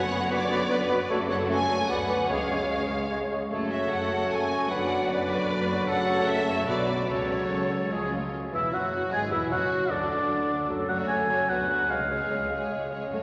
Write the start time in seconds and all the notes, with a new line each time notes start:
Already playing: F#1 F#2 D3 F#3 B3 F#4 C#5 F#5
0.12 B3 F#4 B4
0.31 B3 F#4 B4 D5
0.50 B3 F#4 B4
0.71 B3 F#4 B4
0.89 B3 F#4 B4
1.10 F#1 F#2 C#3 F#3 A3 F#4 A4 C#5
1.29 A3 F#4 C#5 F#5
1.50 A3 F#4 C#5 G#5
1.70 A3 F#4 C#5
1.90 D2 D3 B3 F#4 B4 D5 F#5
2.09 B3 F#4 D5
2.29 C#2 C#3 G#3 C#4 G#4 C#5 F5
2.50 G#3 G#4 C#5
2.69 G#3 G#4 C#5
2.90 G#3 G#4 C#5
3.10 G#3 G#4 C#5
3.31 G#3 G#4 C#5
3.50 F#1 F#2 A3 F#4 A4 C#5
3.70 C#4 F#4 E5
3.90 F#1 F#2 A3 A4 F#5
4.09 C#4 F#4
4.30 F#1 F#2 A3 A4 G#5
4.51 C#4 F#4
4.69 F#1 F#2 D3 F#3 B3 D4 B4 D5 F#5
4.90 F#4 D5
5.09 F#1 F#2 D4 B4 D5
5.29 F#4 D5
5.48 F#1 F#2 D4 B4
5.69 F#4 D5
5.88 F#1 F#2 C#3 F#3 A3 C#4 F#4 A4 F#5
6.08 F#4 C#5
6.26 F#1 F#2 C#4 A4 E5
6.47 F#4 C#5
6.67 B1 B2 F#3 B3 D4 F#4 B4 D5
6.89 F#4 D5
7.08 C#2 C#3 F#3 A3 C#4 F#4 A4 C#5
7.29 F#4 C#5
7.50 C#2 C#3 F#3 C#4 A4
7.71 G#3 F#4 C#5
7.91 C#2 C#3 F3 G#3 C#4 F4 G#4
8.12 A3 F4 C#5
8.52 E1 E2 E3 E4 E5
8.72 F#1 F#2 F#3 F#4 F#5
9.12 G#1 G#2 G#3 G#4 G#5
9.31 E1 E2 E3 E4 E5
9.51 F#1 F#2 F#3 F#4 F#5
9.91 D2 D3 D4 D5
10.70 F#1 F#2 F#3 A3 C#4 A4
10.89 F#3 A3 F#4 A4 C#5 F#5
11.08 F#1 F#2 F#3 A4 G#5
11.29 F#3 A3 F#4 A4 C#5
11.49 D2 F#3 B3 D4 F#4 B4 F#5
11.68 F#3 B3 F#4 B4
11.89 C#2 G#3 C#4 C#5 F5
12.10 G#3 G#4 C#5
12.31 C#2 G#3 C#5
12.51 G#3 G#4 C#5
12.71 C#2 G#3 C#5
12.91 G#3 G#4 C#5
13.12 F#1 F#2 A3 F#4 C#5